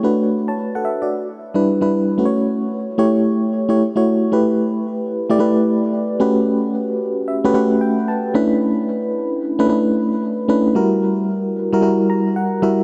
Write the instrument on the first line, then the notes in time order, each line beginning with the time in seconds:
fm electric piano
0.03 A3 D4 F#4 B4
0.48 C#5 A5
0.75 A4 F#5
0.85 E5
1.02 F#4 D5
1.54 G3 D4 E4 B4
1.81 G3 D4 E4 B4
2.18 A3 C#4 F#4 B4
2.25 C#5
2.98 A3 E4 G4 C#5
3.69 A3 E4 G4 C#5
3.96 A3 E4 F#4 C#5
4.32 A3 E4 G4 B4
5.30 A3 E4 G4 D5
5.39 A3 E4 G4 B4
6.20 A3 C#4 F#4 G4 B4
7.28 E5
7.44 A3 C#4 F#4 G4 B4
7.54 A3 C#4 F#4 G4 B4 F#5
7.81 G5
8.08 A5
8.34 A3 C#4 D4 E4 B4 B5
9.59 A3 C#4 D4 E4 B4
9.68 A3 C#4 D4 E4 B4
10.48 A3 C#4 D4 E4 B4
10.75 G3 E4 F#4 A#4
11.73 G3 E4 F#4 A#4
11.82 G3 E4 F#4 A#4
12.10 A#5
12.36 F#5
12.62 G3 E4 F#4 A#4 E5